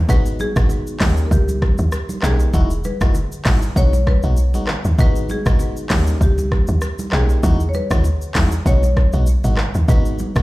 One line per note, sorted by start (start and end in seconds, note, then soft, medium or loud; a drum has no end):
0.09 0.46 G#1 loud
0.09 0.52 G#3 loud
0.09 0.52 B3 medium
0.09 0.52 D#4 medium
0.09 0.53 F#4 loud
0.09 0.24 B4 loud
0.09 kick loud
0.09 low conga medium
0.09 shaker medium
0.26 shaker medium
0.39 0.97 G#4 loud
0.39 high conga medium
0.39 shaker medium
0.56 0.80 G#1 medium
0.56 0.97 G#3 medium
0.56 0.97 B3 medium
0.56 0.97 D#4 medium
0.56 0.98 F#4 medium
0.56 kick loud
0.56 cross-stick loud
0.56 shaker medium
0.69 low conga medium
0.69 shaker medium
0.87 shaker soft
1.00 1.25 D#2 loud
1.00 1.29 A#3 medium
1.00 1.29 C#4 medium
1.00 1.29 D#4 medium
1.00 1.29 G4 medium
1.00 kick loud
1.00 cross-stick loud
1.00 clap loud
1.00 open hi-hat medium
1.00 high conga medium
1.17 shaker medium
1.26 1.32 A#4 medium
1.31 1.68 C#2 loud
1.31 2.20 G4 medium
1.31 kick medium
1.31 low conga medium
1.31 shaker medium
1.48 high conga medium
1.48 shaker medium
1.62 kick loud
1.62 cross-stick medium
1.62 high conga medium
1.78 1.90 D#2 loud
1.78 shaker soft
1.92 cross-stick loud
1.92 shaker medium
2.09 high conga medium
2.09 shaker medium
2.22 2.47 B1 loud
2.22 2.51 A#3 medium
2.22 2.52 C#4 medium
2.22 2.52 D#4 medium
2.22 2.52 G4 medium
2.22 2.81 G#4 medium
2.22 cross-stick loud
2.22 clap loud
2.22 low conga medium
2.22 shaker medium
2.40 shaker medium
2.54 2.91 E1 loud
2.54 2.71 G#3 loud
2.54 2.71 D#4 medium
2.54 2.71 E4 medium
2.54 2.71 F#4 loud
2.54 kick loud
2.54 low conga medium
2.54 shaker medium
2.70 shaker medium
2.84 3.73 B4 loud
2.84 high conga medium
2.84 shaker medium
3.01 3.25 F#1 medium
3.01 3.15 G#3 medium
3.01 3.15 D#4 medium
3.01 3.15 E4 medium
3.01 3.15 F#4 medium
3.01 kick loud
3.01 cross-stick loud
3.01 shaker medium
3.15 low conga medium
3.15 shaker medium
3.32 shaker medium
3.45 3.70 G#1 loud
3.45 3.63 G#3 medium
3.45 3.63 D#4 medium
3.45 3.63 E4 medium
3.45 3.63 F#4 medium
3.45 kick loud
3.45 cross-stick loud
3.45 clap loud
3.45 open hi-hat medium
3.45 high conga medium
3.45 shaker medium
3.62 shaker medium
3.76 4.13 B1 loud
3.76 3.93 G#3 medium
3.76 3.93 B3 medium
3.76 3.93 D#4 medium
3.76 3.94 F#4 loud
3.76 4.08 C#5 loud
3.76 kick loud
3.76 low conga medium
3.76 shaker medium
3.93 high conga medium
3.93 shaker medium
4.07 4.65 B4 medium
4.07 kick loud
4.07 cross-stick medium
4.07 high conga medium
4.23 4.56 B1 medium
4.23 4.38 G#3 medium
4.23 4.38 B3 medium
4.23 4.38 D#4 medium
4.23 4.38 F#4 medium
4.23 shaker soft
4.37 shaker medium
4.54 4.78 G#1 medium
4.54 4.68 G#3 medium
4.54 4.69 B3 medium
4.54 4.69 D#4 medium
4.54 4.69 F#4 medium
4.54 high conga medium
4.54 shaker medium
4.67 cross-stick loud
4.67 clap loud
4.67 low conga medium
4.85 4.96 D#2 medium
4.85 shaker medium
4.98 5.36 G#1 loud
4.98 5.42 G#3 loud
4.98 5.42 B3 medium
4.98 5.42 D#4 medium
4.98 5.42 F#4 loud
4.98 5.31 B4 loud
4.98 kick loud
4.98 low conga medium
4.98 shaker medium
5.16 shaker medium
5.29 5.87 G#4 loud
5.29 high conga medium
5.29 shaker medium
5.46 5.70 G#1 medium
5.46 5.87 G#3 medium
5.46 5.87 B3 medium
5.46 5.87 D#4 medium
5.46 5.87 F#4 medium
5.46 kick loud
5.46 cross-stick loud
5.46 shaker soft
5.59 low conga medium
5.59 shaker medium
5.77 shaker medium
5.90 6.14 D#2 loud
5.90 6.19 A#3 medium
5.90 6.19 C#4 medium
5.90 6.19 D#4 medium
5.90 6.19 G4 medium
5.90 kick loud
5.90 cross-stick loud
5.90 clap loud
5.90 open hi-hat medium
5.90 high conga medium
5.90 shaker medium
6.07 shaker medium
6.21 6.58 C#2 loud
6.21 7.17 G4 medium
6.21 kick loud
6.21 low conga medium
6.21 shaker medium
6.38 high conga medium
6.38 shaker medium
6.52 kick loud
6.52 cross-stick medium
6.52 high conga medium
6.67 6.79 D#2 loud
6.67 shaker medium
6.81 cross-stick medium
6.81 shaker medium
6.99 high conga medium
6.99 shaker medium
7.12 7.37 B1 loud
7.12 7.41 A#3 medium
7.12 7.41 C#4 medium
7.12 7.42 D#4 medium
7.12 7.42 G4 medium
7.12 7.64 G#4 loud
7.12 cross-stick loud
7.12 clap loud
7.12 low conga medium
7.29 shaker medium
7.43 7.80 E2 loud
7.43 7.61 G#3 loud
7.43 7.61 D#4 medium
7.43 7.61 E4 medium
7.43 7.61 F#4 loud
7.43 kick loud
7.43 low conga medium
7.43 shaker medium
7.60 shaker medium
7.69 7.75 C#5 medium
7.74 8.32 B4 loud
7.74 high conga medium
7.74 shaker medium
7.90 8.15 D#2 medium
7.90 8.05 G#3 medium
7.90 8.05 D#4 medium
7.90 8.05 E4 medium
7.90 8.05 F#4 medium
7.90 kick loud
7.90 cross-stick loud
7.90 shaker medium
8.04 low conga medium
8.04 shaker medium
8.22 shaker soft
8.35 8.59 E2 medium
8.35 8.52 G#3 medium
8.35 8.53 D#4 medium
8.35 8.53 E4 medium
8.35 8.53 F#4 medium
8.35 kick loud
8.35 cross-stick loud
8.35 clap loud
8.35 open hi-hat medium
8.35 high conga medium
8.35 shaker medium
8.52 shaker medium
8.66 9.03 B1 loud
8.66 8.83 G#3 medium
8.66 8.83 B3 medium
8.66 8.83 D#4 medium
8.66 8.83 F#4 loud
8.66 9.93 C#5 loud
8.66 kick medium
8.66 low conga medium
8.66 shaker medium
8.83 high conga medium
8.83 shaker medium
8.97 kick loud
8.97 cross-stick medium
8.97 high conga medium
9.13 9.37 B1 medium
9.13 9.28 G#3 medium
9.13 9.28 B3 medium
9.13 9.28 D#4 medium
9.13 9.28 F#4 medium
9.13 shaker soft
9.26 shaker medium
9.44 9.68 G#1 loud
9.44 9.58 G#3 medium
9.44 9.58 B3 medium
9.44 9.58 D#4 medium
9.44 9.59 F#4 medium
9.44 high conga medium
9.44 shaker medium
9.57 cross-stick loud
9.57 clap loud
9.57 low conga medium
9.75 9.86 D#2 medium
9.75 shaker medium
9.88 10.25 G#1 loud
9.88 10.32 G#3 loud
9.88 10.32 B3 medium
9.88 10.32 D#4 medium
9.88 10.32 F#4 loud
9.88 10.42 B4 loud
9.88 kick loud
9.88 low conga medium
9.88 shaker medium
10.05 shaker medium
10.19 high conga medium
10.19 shaker medium
10.36 10.42 G#1 medium
10.36 10.42 G#3 medium
10.36 10.42 B3 medium
10.36 10.42 D#4 medium
10.36 10.42 F#4 medium
10.36 kick loud
10.36 cross-stick loud
10.36 shaker soft